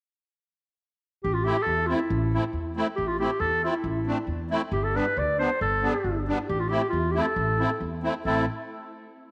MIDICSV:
0, 0, Header, 1, 4, 480
1, 0, Start_track
1, 0, Key_signature, 0, "minor"
1, 0, Tempo, 434153
1, 1374, Time_signature, 2, 2, 24, 8
1, 4739, Tempo, 440205
1, 10219, End_track
2, 0, Start_track
2, 0, Title_t, "Clarinet"
2, 0, Program_c, 0, 71
2, 1367, Note_on_c, 0, 67, 79
2, 1471, Note_on_c, 0, 65, 68
2, 1487, Note_off_c, 0, 67, 0
2, 1587, Note_on_c, 0, 67, 87
2, 1604, Note_off_c, 0, 65, 0
2, 1791, Note_on_c, 0, 69, 81
2, 1808, Note_off_c, 0, 67, 0
2, 2058, Note_on_c, 0, 65, 76
2, 2075, Note_off_c, 0, 69, 0
2, 2159, Note_on_c, 0, 64, 65
2, 2175, Note_off_c, 0, 65, 0
2, 2905, Note_off_c, 0, 64, 0
2, 3270, Note_on_c, 0, 67, 89
2, 3396, Note_on_c, 0, 65, 79
2, 3413, Note_off_c, 0, 67, 0
2, 3519, Note_off_c, 0, 65, 0
2, 3525, Note_on_c, 0, 67, 86
2, 3757, Note_on_c, 0, 69, 91
2, 3774, Note_off_c, 0, 67, 0
2, 4006, Note_off_c, 0, 69, 0
2, 4022, Note_on_c, 0, 65, 68
2, 4145, Note_on_c, 0, 64, 59
2, 4162, Note_off_c, 0, 65, 0
2, 4863, Note_off_c, 0, 64, 0
2, 5216, Note_on_c, 0, 67, 82
2, 5339, Note_on_c, 0, 69, 70
2, 5355, Note_off_c, 0, 67, 0
2, 5477, Note_on_c, 0, 71, 84
2, 5493, Note_off_c, 0, 69, 0
2, 5714, Note_on_c, 0, 74, 80
2, 5730, Note_off_c, 0, 71, 0
2, 5933, Note_off_c, 0, 74, 0
2, 5940, Note_on_c, 0, 72, 81
2, 6160, Note_off_c, 0, 72, 0
2, 6186, Note_on_c, 0, 69, 73
2, 6856, Note_off_c, 0, 69, 0
2, 7140, Note_on_c, 0, 67, 77
2, 7257, Note_on_c, 0, 65, 65
2, 7274, Note_off_c, 0, 67, 0
2, 7348, Note_on_c, 0, 67, 82
2, 7365, Note_off_c, 0, 65, 0
2, 7571, Note_off_c, 0, 67, 0
2, 7577, Note_on_c, 0, 65, 75
2, 7815, Note_on_c, 0, 67, 60
2, 7831, Note_off_c, 0, 65, 0
2, 7922, Note_on_c, 0, 69, 73
2, 7939, Note_off_c, 0, 67, 0
2, 8670, Note_off_c, 0, 69, 0
2, 9046, Note_on_c, 0, 69, 70
2, 9275, Note_off_c, 0, 69, 0
2, 10219, End_track
3, 0, Start_track
3, 0, Title_t, "Accordion"
3, 0, Program_c, 1, 21
3, 1607, Note_on_c, 1, 57, 58
3, 1612, Note_on_c, 1, 64, 69
3, 1613, Note_on_c, 1, 60, 53
3, 1730, Note_off_c, 1, 57, 0
3, 1732, Note_off_c, 1, 64, 0
3, 1733, Note_off_c, 1, 60, 0
3, 2080, Note_on_c, 1, 57, 55
3, 2084, Note_on_c, 1, 60, 51
3, 2084, Note_on_c, 1, 64, 67
3, 2205, Note_off_c, 1, 57, 0
3, 2207, Note_off_c, 1, 60, 0
3, 2207, Note_off_c, 1, 64, 0
3, 2582, Note_on_c, 1, 57, 63
3, 2582, Note_on_c, 1, 64, 64
3, 2593, Note_on_c, 1, 60, 57
3, 2696, Note_off_c, 1, 57, 0
3, 2697, Note_off_c, 1, 64, 0
3, 2702, Note_off_c, 1, 60, 0
3, 3056, Note_on_c, 1, 57, 81
3, 3057, Note_on_c, 1, 60, 68
3, 3059, Note_on_c, 1, 64, 83
3, 3174, Note_off_c, 1, 57, 0
3, 3174, Note_off_c, 1, 60, 0
3, 3175, Note_off_c, 1, 64, 0
3, 3537, Note_on_c, 1, 57, 60
3, 3538, Note_on_c, 1, 60, 58
3, 3539, Note_on_c, 1, 64, 65
3, 3655, Note_off_c, 1, 57, 0
3, 3656, Note_off_c, 1, 60, 0
3, 3656, Note_off_c, 1, 64, 0
3, 4015, Note_on_c, 1, 57, 57
3, 4020, Note_on_c, 1, 60, 63
3, 4023, Note_on_c, 1, 64, 70
3, 4135, Note_off_c, 1, 57, 0
3, 4138, Note_off_c, 1, 60, 0
3, 4139, Note_off_c, 1, 64, 0
3, 4497, Note_on_c, 1, 57, 62
3, 4498, Note_on_c, 1, 60, 48
3, 4500, Note_on_c, 1, 62, 62
3, 4618, Note_off_c, 1, 57, 0
3, 4618, Note_off_c, 1, 60, 0
3, 4620, Note_off_c, 1, 62, 0
3, 4979, Note_on_c, 1, 57, 79
3, 4980, Note_on_c, 1, 60, 57
3, 4980, Note_on_c, 1, 64, 87
3, 5098, Note_off_c, 1, 57, 0
3, 5098, Note_off_c, 1, 60, 0
3, 5098, Note_off_c, 1, 64, 0
3, 5455, Note_on_c, 1, 62, 57
3, 5458, Note_on_c, 1, 59, 50
3, 5461, Note_on_c, 1, 55, 62
3, 5575, Note_off_c, 1, 62, 0
3, 5576, Note_off_c, 1, 59, 0
3, 5578, Note_off_c, 1, 55, 0
3, 5944, Note_on_c, 1, 59, 50
3, 5946, Note_on_c, 1, 62, 63
3, 5949, Note_on_c, 1, 55, 56
3, 6059, Note_off_c, 1, 59, 0
3, 6060, Note_off_c, 1, 62, 0
3, 6061, Note_off_c, 1, 55, 0
3, 6417, Note_on_c, 1, 62, 73
3, 6418, Note_on_c, 1, 55, 56
3, 6424, Note_on_c, 1, 59, 58
3, 6535, Note_off_c, 1, 62, 0
3, 6536, Note_off_c, 1, 55, 0
3, 6539, Note_off_c, 1, 59, 0
3, 6914, Note_on_c, 1, 62, 73
3, 6917, Note_on_c, 1, 55, 76
3, 6922, Note_on_c, 1, 59, 64
3, 7024, Note_off_c, 1, 62, 0
3, 7026, Note_off_c, 1, 55, 0
3, 7028, Note_off_c, 1, 59, 0
3, 7380, Note_on_c, 1, 57, 59
3, 7383, Note_on_c, 1, 60, 57
3, 7383, Note_on_c, 1, 64, 67
3, 7498, Note_off_c, 1, 57, 0
3, 7499, Note_off_c, 1, 60, 0
3, 7499, Note_off_c, 1, 64, 0
3, 7857, Note_on_c, 1, 57, 57
3, 7863, Note_on_c, 1, 64, 72
3, 7865, Note_on_c, 1, 60, 54
3, 7977, Note_off_c, 1, 57, 0
3, 7980, Note_off_c, 1, 64, 0
3, 7981, Note_off_c, 1, 60, 0
3, 8347, Note_on_c, 1, 60, 58
3, 8347, Note_on_c, 1, 64, 61
3, 8348, Note_on_c, 1, 57, 67
3, 8462, Note_off_c, 1, 57, 0
3, 8462, Note_off_c, 1, 60, 0
3, 8462, Note_off_c, 1, 64, 0
3, 8822, Note_on_c, 1, 57, 61
3, 8824, Note_on_c, 1, 60, 71
3, 8826, Note_on_c, 1, 64, 73
3, 8940, Note_off_c, 1, 57, 0
3, 8941, Note_off_c, 1, 60, 0
3, 8942, Note_off_c, 1, 64, 0
3, 9063, Note_on_c, 1, 60, 54
3, 9066, Note_on_c, 1, 57, 70
3, 9066, Note_on_c, 1, 64, 74
3, 9284, Note_off_c, 1, 60, 0
3, 9285, Note_off_c, 1, 57, 0
3, 9286, Note_off_c, 1, 64, 0
3, 10219, End_track
4, 0, Start_track
4, 0, Title_t, "Upright bass"
4, 0, Program_c, 2, 32
4, 1375, Note_on_c, 2, 33, 80
4, 1662, Note_off_c, 2, 33, 0
4, 1840, Note_on_c, 2, 40, 75
4, 2131, Note_off_c, 2, 40, 0
4, 2325, Note_on_c, 2, 33, 95
4, 2615, Note_off_c, 2, 33, 0
4, 2797, Note_on_c, 2, 40, 72
4, 3090, Note_off_c, 2, 40, 0
4, 3294, Note_on_c, 2, 33, 81
4, 3582, Note_off_c, 2, 33, 0
4, 3758, Note_on_c, 2, 40, 80
4, 4052, Note_off_c, 2, 40, 0
4, 4242, Note_on_c, 2, 33, 82
4, 4536, Note_off_c, 2, 33, 0
4, 4720, Note_on_c, 2, 40, 74
4, 5012, Note_off_c, 2, 40, 0
4, 5207, Note_on_c, 2, 31, 91
4, 5497, Note_off_c, 2, 31, 0
4, 5698, Note_on_c, 2, 38, 81
4, 5985, Note_off_c, 2, 38, 0
4, 6184, Note_on_c, 2, 31, 85
4, 6469, Note_off_c, 2, 31, 0
4, 6654, Note_on_c, 2, 31, 73
4, 6942, Note_off_c, 2, 31, 0
4, 7146, Note_on_c, 2, 33, 87
4, 7431, Note_off_c, 2, 33, 0
4, 7620, Note_on_c, 2, 40, 85
4, 7907, Note_off_c, 2, 40, 0
4, 8093, Note_on_c, 2, 33, 89
4, 8382, Note_off_c, 2, 33, 0
4, 8575, Note_on_c, 2, 40, 77
4, 8864, Note_off_c, 2, 40, 0
4, 9062, Note_on_c, 2, 33, 73
4, 9283, Note_off_c, 2, 33, 0
4, 10219, End_track
0, 0, End_of_file